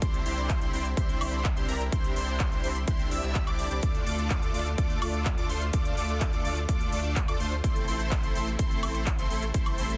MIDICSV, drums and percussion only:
0, 0, Header, 1, 2, 480
1, 0, Start_track
1, 0, Key_signature, -1, "minor"
1, 0, Tempo, 476190
1, 20, Time_signature, 4, 2, 24, 8
1, 10052, End_track
2, 0, Start_track
2, 0, Title_t, "Drums"
2, 20, Note_on_c, 9, 42, 94
2, 21, Note_on_c, 9, 36, 120
2, 120, Note_off_c, 9, 42, 0
2, 121, Note_off_c, 9, 36, 0
2, 140, Note_on_c, 9, 42, 39
2, 241, Note_off_c, 9, 42, 0
2, 260, Note_on_c, 9, 46, 113
2, 360, Note_off_c, 9, 46, 0
2, 380, Note_on_c, 9, 42, 40
2, 481, Note_off_c, 9, 42, 0
2, 498, Note_on_c, 9, 39, 126
2, 500, Note_on_c, 9, 36, 127
2, 500, Note_on_c, 9, 42, 95
2, 599, Note_off_c, 9, 39, 0
2, 600, Note_off_c, 9, 42, 0
2, 601, Note_off_c, 9, 36, 0
2, 619, Note_on_c, 9, 42, 39
2, 720, Note_off_c, 9, 42, 0
2, 740, Note_on_c, 9, 46, 91
2, 841, Note_off_c, 9, 46, 0
2, 860, Note_on_c, 9, 42, 40
2, 960, Note_off_c, 9, 42, 0
2, 980, Note_on_c, 9, 36, 122
2, 980, Note_on_c, 9, 42, 90
2, 1080, Note_off_c, 9, 42, 0
2, 1081, Note_off_c, 9, 36, 0
2, 1100, Note_on_c, 9, 42, 39
2, 1201, Note_off_c, 9, 42, 0
2, 1219, Note_on_c, 9, 46, 116
2, 1219, Note_on_c, 9, 76, 80
2, 1320, Note_off_c, 9, 46, 0
2, 1320, Note_off_c, 9, 76, 0
2, 1340, Note_on_c, 9, 42, 38
2, 1440, Note_off_c, 9, 42, 0
2, 1458, Note_on_c, 9, 39, 126
2, 1460, Note_on_c, 9, 36, 122
2, 1460, Note_on_c, 9, 42, 92
2, 1559, Note_off_c, 9, 39, 0
2, 1560, Note_off_c, 9, 42, 0
2, 1561, Note_off_c, 9, 36, 0
2, 1580, Note_on_c, 9, 42, 39
2, 1681, Note_off_c, 9, 42, 0
2, 1699, Note_on_c, 9, 46, 100
2, 1800, Note_off_c, 9, 46, 0
2, 1820, Note_on_c, 9, 42, 38
2, 1921, Note_off_c, 9, 42, 0
2, 1939, Note_on_c, 9, 42, 89
2, 1940, Note_on_c, 9, 36, 124
2, 2040, Note_off_c, 9, 42, 0
2, 2041, Note_off_c, 9, 36, 0
2, 2059, Note_on_c, 9, 42, 38
2, 2160, Note_off_c, 9, 42, 0
2, 2179, Note_on_c, 9, 46, 112
2, 2280, Note_off_c, 9, 46, 0
2, 2299, Note_on_c, 9, 42, 39
2, 2400, Note_off_c, 9, 42, 0
2, 2417, Note_on_c, 9, 39, 127
2, 2418, Note_on_c, 9, 42, 91
2, 2420, Note_on_c, 9, 36, 127
2, 2518, Note_off_c, 9, 39, 0
2, 2519, Note_off_c, 9, 42, 0
2, 2521, Note_off_c, 9, 36, 0
2, 2538, Note_on_c, 9, 42, 37
2, 2639, Note_off_c, 9, 42, 0
2, 2658, Note_on_c, 9, 46, 92
2, 2759, Note_off_c, 9, 46, 0
2, 2779, Note_on_c, 9, 42, 37
2, 2880, Note_off_c, 9, 42, 0
2, 2898, Note_on_c, 9, 42, 89
2, 2900, Note_on_c, 9, 36, 125
2, 2999, Note_off_c, 9, 42, 0
2, 3001, Note_off_c, 9, 36, 0
2, 3018, Note_on_c, 9, 42, 39
2, 3119, Note_off_c, 9, 42, 0
2, 3138, Note_on_c, 9, 46, 110
2, 3239, Note_off_c, 9, 46, 0
2, 3257, Note_on_c, 9, 39, 36
2, 3258, Note_on_c, 9, 42, 36
2, 3358, Note_off_c, 9, 39, 0
2, 3359, Note_off_c, 9, 42, 0
2, 3377, Note_on_c, 9, 39, 114
2, 3378, Note_on_c, 9, 42, 88
2, 3380, Note_on_c, 9, 36, 119
2, 3477, Note_off_c, 9, 39, 0
2, 3479, Note_off_c, 9, 42, 0
2, 3481, Note_off_c, 9, 36, 0
2, 3498, Note_on_c, 9, 42, 37
2, 3498, Note_on_c, 9, 76, 70
2, 3599, Note_off_c, 9, 42, 0
2, 3599, Note_off_c, 9, 76, 0
2, 3617, Note_on_c, 9, 46, 93
2, 3718, Note_off_c, 9, 46, 0
2, 3738, Note_on_c, 9, 42, 37
2, 3839, Note_off_c, 9, 42, 0
2, 3858, Note_on_c, 9, 42, 93
2, 3860, Note_on_c, 9, 36, 114
2, 3958, Note_off_c, 9, 42, 0
2, 3961, Note_off_c, 9, 36, 0
2, 3978, Note_on_c, 9, 42, 38
2, 4079, Note_off_c, 9, 42, 0
2, 4098, Note_on_c, 9, 46, 108
2, 4199, Note_off_c, 9, 46, 0
2, 4219, Note_on_c, 9, 42, 41
2, 4320, Note_off_c, 9, 42, 0
2, 4337, Note_on_c, 9, 39, 116
2, 4338, Note_on_c, 9, 42, 94
2, 4340, Note_on_c, 9, 36, 127
2, 4438, Note_off_c, 9, 39, 0
2, 4439, Note_off_c, 9, 42, 0
2, 4441, Note_off_c, 9, 36, 0
2, 4459, Note_on_c, 9, 42, 40
2, 4560, Note_off_c, 9, 42, 0
2, 4578, Note_on_c, 9, 46, 91
2, 4679, Note_off_c, 9, 46, 0
2, 4699, Note_on_c, 9, 42, 40
2, 4800, Note_off_c, 9, 42, 0
2, 4819, Note_on_c, 9, 42, 89
2, 4820, Note_on_c, 9, 36, 121
2, 4920, Note_off_c, 9, 42, 0
2, 4921, Note_off_c, 9, 36, 0
2, 4939, Note_on_c, 9, 42, 38
2, 5040, Note_off_c, 9, 42, 0
2, 5059, Note_on_c, 9, 46, 111
2, 5059, Note_on_c, 9, 76, 86
2, 5160, Note_off_c, 9, 46, 0
2, 5160, Note_off_c, 9, 76, 0
2, 5179, Note_on_c, 9, 42, 38
2, 5280, Note_off_c, 9, 42, 0
2, 5297, Note_on_c, 9, 39, 114
2, 5299, Note_on_c, 9, 42, 88
2, 5301, Note_on_c, 9, 36, 116
2, 5398, Note_off_c, 9, 39, 0
2, 5400, Note_off_c, 9, 42, 0
2, 5402, Note_off_c, 9, 36, 0
2, 5419, Note_on_c, 9, 42, 37
2, 5520, Note_off_c, 9, 42, 0
2, 5539, Note_on_c, 9, 46, 95
2, 5640, Note_off_c, 9, 46, 0
2, 5659, Note_on_c, 9, 42, 37
2, 5760, Note_off_c, 9, 42, 0
2, 5778, Note_on_c, 9, 42, 99
2, 5781, Note_on_c, 9, 36, 115
2, 5879, Note_off_c, 9, 42, 0
2, 5882, Note_off_c, 9, 36, 0
2, 5899, Note_on_c, 9, 42, 38
2, 6000, Note_off_c, 9, 42, 0
2, 6019, Note_on_c, 9, 46, 107
2, 6120, Note_off_c, 9, 46, 0
2, 6140, Note_on_c, 9, 42, 40
2, 6241, Note_off_c, 9, 42, 0
2, 6258, Note_on_c, 9, 39, 119
2, 6259, Note_on_c, 9, 42, 95
2, 6261, Note_on_c, 9, 36, 122
2, 6359, Note_off_c, 9, 39, 0
2, 6360, Note_off_c, 9, 42, 0
2, 6362, Note_off_c, 9, 36, 0
2, 6380, Note_on_c, 9, 42, 40
2, 6481, Note_off_c, 9, 42, 0
2, 6500, Note_on_c, 9, 46, 87
2, 6600, Note_off_c, 9, 46, 0
2, 6620, Note_on_c, 9, 42, 41
2, 6721, Note_off_c, 9, 42, 0
2, 6740, Note_on_c, 9, 42, 94
2, 6742, Note_on_c, 9, 36, 113
2, 6841, Note_off_c, 9, 42, 0
2, 6842, Note_off_c, 9, 36, 0
2, 6860, Note_on_c, 9, 42, 41
2, 6961, Note_off_c, 9, 42, 0
2, 6980, Note_on_c, 9, 46, 109
2, 7081, Note_off_c, 9, 46, 0
2, 7100, Note_on_c, 9, 42, 37
2, 7201, Note_off_c, 9, 42, 0
2, 7219, Note_on_c, 9, 39, 115
2, 7220, Note_on_c, 9, 42, 94
2, 7221, Note_on_c, 9, 36, 112
2, 7319, Note_off_c, 9, 39, 0
2, 7321, Note_off_c, 9, 42, 0
2, 7322, Note_off_c, 9, 36, 0
2, 7340, Note_on_c, 9, 42, 38
2, 7340, Note_on_c, 9, 76, 70
2, 7441, Note_off_c, 9, 42, 0
2, 7441, Note_off_c, 9, 76, 0
2, 7460, Note_on_c, 9, 46, 87
2, 7561, Note_off_c, 9, 46, 0
2, 7580, Note_on_c, 9, 42, 39
2, 7681, Note_off_c, 9, 42, 0
2, 7701, Note_on_c, 9, 36, 107
2, 7701, Note_on_c, 9, 42, 102
2, 7801, Note_off_c, 9, 42, 0
2, 7802, Note_off_c, 9, 36, 0
2, 7820, Note_on_c, 9, 42, 41
2, 7921, Note_off_c, 9, 42, 0
2, 7940, Note_on_c, 9, 46, 100
2, 8041, Note_off_c, 9, 46, 0
2, 8060, Note_on_c, 9, 42, 43
2, 8161, Note_off_c, 9, 42, 0
2, 8178, Note_on_c, 9, 39, 118
2, 8180, Note_on_c, 9, 42, 98
2, 8181, Note_on_c, 9, 36, 121
2, 8279, Note_off_c, 9, 39, 0
2, 8280, Note_off_c, 9, 42, 0
2, 8282, Note_off_c, 9, 36, 0
2, 8300, Note_on_c, 9, 42, 44
2, 8401, Note_off_c, 9, 42, 0
2, 8420, Note_on_c, 9, 46, 83
2, 8521, Note_off_c, 9, 46, 0
2, 8540, Note_on_c, 9, 42, 42
2, 8641, Note_off_c, 9, 42, 0
2, 8659, Note_on_c, 9, 42, 99
2, 8661, Note_on_c, 9, 36, 115
2, 8760, Note_off_c, 9, 42, 0
2, 8761, Note_off_c, 9, 36, 0
2, 8779, Note_on_c, 9, 42, 40
2, 8880, Note_off_c, 9, 42, 0
2, 8899, Note_on_c, 9, 46, 102
2, 8899, Note_on_c, 9, 76, 84
2, 9000, Note_off_c, 9, 46, 0
2, 9000, Note_off_c, 9, 76, 0
2, 9020, Note_on_c, 9, 42, 39
2, 9120, Note_off_c, 9, 42, 0
2, 9138, Note_on_c, 9, 39, 117
2, 9139, Note_on_c, 9, 42, 93
2, 9141, Note_on_c, 9, 36, 108
2, 9238, Note_off_c, 9, 39, 0
2, 9240, Note_off_c, 9, 42, 0
2, 9241, Note_off_c, 9, 36, 0
2, 9259, Note_on_c, 9, 42, 42
2, 9360, Note_off_c, 9, 42, 0
2, 9379, Note_on_c, 9, 46, 89
2, 9479, Note_off_c, 9, 46, 0
2, 9499, Note_on_c, 9, 42, 41
2, 9599, Note_off_c, 9, 42, 0
2, 9619, Note_on_c, 9, 42, 100
2, 9620, Note_on_c, 9, 36, 112
2, 9719, Note_off_c, 9, 42, 0
2, 9721, Note_off_c, 9, 36, 0
2, 9739, Note_on_c, 9, 42, 40
2, 9739, Note_on_c, 9, 76, 61
2, 9840, Note_off_c, 9, 42, 0
2, 9840, Note_off_c, 9, 76, 0
2, 9859, Note_on_c, 9, 46, 107
2, 9959, Note_off_c, 9, 46, 0
2, 9979, Note_on_c, 9, 42, 43
2, 10052, Note_off_c, 9, 42, 0
2, 10052, End_track
0, 0, End_of_file